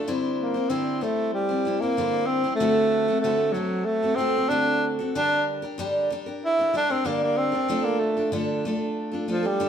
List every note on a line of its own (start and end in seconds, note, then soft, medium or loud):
0.00 0.14 A3 medium
0.00 0.15 D4 medium
0.00 0.15 F4 medium
0.07 0.55 D3 medium
0.07 0.55 G3 medium
0.07 0.56 C4 medium
0.07 0.55 E4 medium
0.07 0.53 C5 medium
0.40 0.71 A#3 medium
0.54 0.69 C4 soft
0.54 0.70 E4 soft
0.54 0.70 C5 soft
0.70 1.02 D3 medium
0.70 1.00 G3 medium
0.70 1.04 C4 medium
0.70 1.01 C4 medium
0.70 1.02 E4 medium
0.70 1.03 C5 medium
1.01 1.50 G3 medium
1.01 1.33 A3 medium
1.01 1.50 C4 soft
1.01 1.49 E4 soft
1.01 1.48 C5 soft
1.34 1.82 G3 medium
1.49 1.65 C4 soft
1.49 1.66 E4 soft
1.49 1.66 C5 soft
1.65 1.82 G3 soft
1.65 1.82 C4 soft
1.65 1.82 E4 medium
1.65 1.81 C5 medium
1.80 2.28 A#3 medium
1.80 1.97 C4 soft
1.80 1.97 E4 soft
1.80 1.98 C5 soft
1.97 2.45 D3 medium
1.97 2.46 G3 medium
1.97 2.45 C4 medium
1.97 2.44 E4 medium
1.97 2.42 C5 medium
2.26 2.55 C4 medium
2.44 2.60 C4 soft
2.44 2.60 E4 soft
2.44 2.61 C5 soft
2.55 3.18 A3 medium
2.60 3.09 D3 medium
2.60 3.09 A3 medium
2.60 3.09 C4 medium
2.60 3.09 F#4 medium
2.60 3.07 A4 medium
3.08 3.23 C4 soft
3.08 3.24 F#4 soft
3.08 3.24 A4 soft
3.21 3.57 D3 medium
3.21 3.54 A3 medium
3.21 3.53 A3 medium
3.21 3.54 C4 medium
3.25 3.54 F#4 medium
3.25 3.55 A4 medium
3.52 3.86 F#3 medium
3.52 4.03 A3 medium
3.52 4.03 C4 soft
3.52 4.03 F#4 medium
3.56 4.01 A4 medium
3.85 4.17 A3 medium
4.03 4.18 C4 soft
4.03 4.19 F#4 soft
4.03 4.19 A4 soft
4.15 4.35 A3 medium
4.15 4.50 C4 medium
4.15 4.36 C4 medium
4.20 4.36 F#4 medium
4.20 4.35 A4 medium
4.36 4.50 C4 soft
4.36 4.50 F#4 soft
4.36 4.51 A4 soft
4.49 4.99 D3 medium
4.49 4.99 A3 medium
4.49 4.99 C4 medium
4.49 4.87 D4 medium
4.49 4.99 F#4 medium
4.49 4.98 A4 medium
4.99 5.15 C4 soft
4.99 5.16 F#4 soft
4.99 5.15 A4 medium
5.15 5.63 D3 medium
5.15 5.64 G3 medium
5.15 5.63 D4 medium
5.15 5.45 D4 medium
5.15 5.62 G4 medium
5.15 5.61 A#4 medium
5.62 5.78 D4 soft
5.62 5.78 G4 soft
5.62 5.79 A#4 medium
5.78 6.10 D3 medium
5.78 6.09 G3 medium
5.78 6.11 D4 medium
5.78 6.11 G4 medium
5.78 6.12 A#4 medium
6.10 6.27 G3 medium
6.10 6.27 D4 medium
6.10 6.26 G4 medium
6.10 6.25 A#4 medium
6.26 6.59 D4 soft
6.26 6.58 G4 soft
6.26 6.57 A#4 soft
6.45 6.74 E4 medium
6.59 6.73 D4 soft
6.59 6.74 G4 soft
6.59 6.74 A#4 soft
6.74 6.90 G3 soft
6.74 6.90 D4 medium
6.74 6.92 D4 medium
6.74 6.89 G4 medium
6.74 6.89 A#4 medium
6.90 7.08 C4 medium
6.90 7.05 D4 soft
6.90 7.05 G4 soft
6.90 7.04 A#4 soft
7.05 7.53 D3 medium
7.05 7.53 G3 medium
7.05 7.22 A#3 medium
7.05 7.54 D4 medium
7.05 7.52 G4 medium
7.05 7.51 A#4 medium
7.23 7.39 A#3 medium
7.37 7.86 C4 medium
7.52 7.69 D4 soft
7.52 7.70 G4 soft
7.52 7.69 A#4 soft
7.68 8.17 D3 medium
7.68 8.17 A3 medium
7.68 8.18 D4 medium
7.68 8.16 F4 medium
7.68 8.16 A4 medium
7.85 8.01 A#3 medium
7.99 8.32 A3 medium
8.17 8.32 D4 soft
8.17 8.32 F4 soft
8.17 8.32 A4 soft
8.32 8.65 D3 medium
8.32 8.64 A3 medium
8.32 8.65 D4 medium
8.32 8.65 F4 medium
8.32 8.65 A4 medium
8.65 9.13 A3 medium
8.65 9.13 D4 medium
8.65 9.12 F4 medium
8.65 9.10 A4 medium
9.12 9.27 D4 soft
9.12 9.28 F4 soft
9.12 9.28 A4 soft
9.28 9.48 F3 medium
9.28 9.44 A3 medium
9.28 9.44 D4 medium
9.28 9.43 F4 medium
9.28 9.42 A4 medium
9.43 9.69 G3 medium
9.43 9.59 D4 soft
9.43 9.60 F4 soft
9.43 9.60 A4 soft
9.60 9.69 D3 medium
9.60 9.69 A3 medium
9.60 9.69 D4 medium
9.60 9.69 F4 medium
9.60 9.69 A4 medium